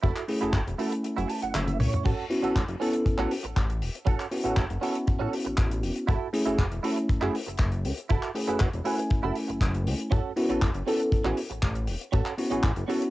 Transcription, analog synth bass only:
0.04 0.11 F#1 loud
0.42 0.52 F#1 soft
0.53 0.61 F#1 loud
0.67 0.74 E1 medium
1.18 1.25 F#1 medium
1.43 1.52 F#1 soft
1.55 1.82 F#1 medium
1.80 1.88 C#2 medium
2.06 2.13 A1 loud
2.43 2.53 A1 soft
2.56 2.64 A1 medium
2.69 2.76 F#1 medium
3.06 3.16 A1 soft
3.19 3.26 A1 medium
3.44 3.54 A1 soft
3.57 3.83 A1 medium
3.82 3.90 E1 medium
4.07 4.15 A1 medium
4.45 4.55 A1 soft
4.57 4.65 A1 loud
4.70 4.78 F#1 medium
5.21 5.28 A1 medium
5.46 5.56 A1 soft
5.58 5.85 A1 medium
5.83 5.91 E1 medium
6.09 6.16 F#1 loud
6.47 6.56 F#1 soft
6.59 6.67 F#1 loud
6.72 6.79 E1 medium
7.09 7.20 F#1 soft
7.22 7.30 F#1 medium
7.48 7.57 F#1 soft
7.59 7.86 F#1 medium
7.85 7.93 C#2 medium
8.11 8.18 F#1 medium
8.48 8.58 F#1 soft
8.61 8.69 F#1 loud
8.74 8.81 E1 medium
9.24 9.31 F#1 medium
9.49 9.59 F#1 soft
9.61 9.88 F#1 medium
9.87 9.94 C#2 medium
10.12 10.20 A1 medium
10.50 10.60 A1 soft
10.62 10.70 A1 loud
10.75 10.83 F#1 medium
11.12 11.23 A1 soft
11.25 11.33 A1 medium
11.51 11.61 A1 soft
11.63 11.90 A1 medium
11.88 11.96 E1 medium
12.13 12.21 A1 loud
12.52 12.61 A1 soft
12.64 12.72 A1 loud
12.77 12.84 F#1 medium

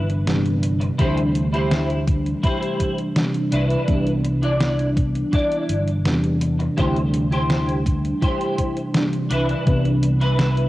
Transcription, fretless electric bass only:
0.00 0.89 G1 loud
0.99 2.33 D2 loud
3.52 3.75 C2 medium
3.88 5.22 C2 loud
5.69 6.05 G1 loud
6.05 6.67 E2 medium
6.78 8.11 D2 loud
9.30 9.53 C2 medium
9.67 10.69 C2 loud

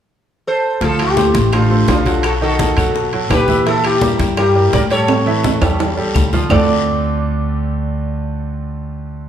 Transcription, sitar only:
0.47 0.80 A4 medium
0.47 0.84 C5 medium
0.83 0.99 F4 medium
0.83 0.99 A4 medium
1.01 1.50 E4 medium
1.01 1.54 G4 medium
1.54 1.86 D4 medium
1.54 1.87 F4 medium
1.89 2.22 D4 medium
1.89 2.25 F4 medium
2.25 2.30 F#4 medium
2.25 2.30 A4 medium
2.43 3.27 F#4 medium
2.43 3.33 A4 medium
3.33 3.65 G4 medium
3.33 3.68 B4 medium
3.67 3.84 E4 medium
3.67 3.85 A4 medium
3.86 4.35 E4 medium
3.86 4.37 G4 medium
4.38 4.71 E4 medium
4.38 4.71 G4 medium
4.74 4.80 A#4 medium
4.74 4.79 D5 medium
4.91 6.30 A4 medium
4.91 6.29 C#5 loud
6.51 9.29 D5 medium

